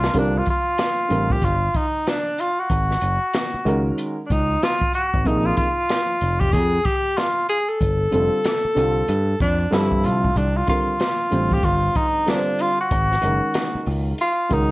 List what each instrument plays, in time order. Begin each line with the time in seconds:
Already playing: tenor saxophone F4
0.04 snare
0.13 picked electric bass C2, grand piano D3 G3 C4 F4 A#4, kick, closed hi-hat
0.18 tenor saxophone D4
0.38 tenor saxophone F4
0.46 kick, closed hi-hat
0.50 tenor saxophone F4
0.78 snare, closed hi-hat
1.09 picked electric bass A1, grand piano D3 G3 C4 F4 A#4, closed hi-hat
1.30 tenor saxophone G4, kick
1.42 picked electric bass G1, tenor saxophone F4, kick, closed hi-hat
1.74 tenor saxophone D#4, kick, closed hi-hat
2.06 tenor saxophone D4, snare, closed hi-hat
2.38 tenor saxophone F4, closed hi-hat
2.60 tenor saxophone F#4
2.70 picked electric bass G#1, kick, closed hi-hat
2.91 snare
3.01 picked electric bass F#1, closed hi-hat
3.34 snare, closed hi-hat
3.54 muted picked electric bass stroke
3.65 picked electric bass C#2, grand piano D#3 G#3 C#4 F#4 A#4, closed hi-hat
3.98 closed hi-hat
4.26 tenor saxophone D4
4.30 picked electric bass C#2, tenor saxophone D#4, kick, closed hi-hat
4.62 tenor saxophone F4, snare, closed hi-hat
4.81 kick
4.93 tenor saxophone F#4, closed hi-hat
5.14 picked electric bass G#1, kick
5.24 picked electric bass A#1, grand piano C3 F3 A#3 D#4 G#4, tenor saxophone D#4, kick, closed hi-hat
5.46 tenor saxophone F4
5.57 tenor saxophone F4, kick, closed hi-hat
5.89 snare, closed hi-hat
6.21 picked electric bass F1, closed hi-hat
6.40 tenor saxophone G4, kick
6.53 picked electric bass F2, tenor saxophone G#4, kick, closed hi-hat
6.85 tenor saxophone G4, kick, closed hi-hat
7.17 tenor saxophone F4, snare, closed hi-hat
7.49 tenor saxophone G#4, closed hi-hat
7.69 tenor saxophone A4
7.81 picked electric bass G1, kick, closed hi-hat
8.11 picked electric bass F1, grand piano D3 G3 C4 F4 A4, closed hi-hat
8.44 snare, closed hi-hat
8.65 muted picked electric bass stroke
8.75 picked electric bass C2, grand piano D3 G3 C4 F4 A4, closed hi-hat
9.08 picked electric bass G2, closed hi-hat
9.40 picked electric bass F2, tenor saxophone D4, kick, closed hi-hat
9.71 picked electric bass G2, grand piano D3 F3 G3 C4 A4, tenor saxophone E4, snare, closed hi-hat
9.92 kick
10.04 picked electric bass C2, tenor saxophone F4, closed hi-hat
10.24 kick
10.36 picked electric bass C2, tenor saxophone D4, kick, closed hi-hat
10.57 tenor saxophone F4
10.67 grand piano D3 G3 C4 F4 A#4, tenor saxophone F4, kick, closed hi-hat
11.00 snare, closed hi-hat
11.30 picked electric bass A1, grand piano D3 G3 C4 F4 C5, closed hi-hat
11.51 tenor saxophone G4, kick
11.63 picked electric bass G1, tenor saxophone F4, kick, closed hi-hat
11.95 tenor saxophone D#4, kick, closed hi-hat
12.26 grand piano D3 G3 C4 F4 B4, tenor saxophone D4, snare, closed hi-hat
12.35 grand piano C5
12.59 tenor saxophone F4, closed hi-hat
12.80 tenor saxophone F#4
12.91 picked electric bass G#1, kick, closed hi-hat
13.11 snare
13.21 picked electric bass F#1, grand piano D#3 G#3 C#4 F#4 A#4, closed hi-hat
13.54 snare, closed hi-hat
13.75 muted picked electric bass stroke
13.86 picked electric bass C#2, open hi-hat
14.18 tenor saxophone F4, closed hi-hat
14.49 picked electric bass C#2, grand piano D#3 G#3 C#4 F#4 A#4, tenor saxophone D#4, kick, closed hi-hat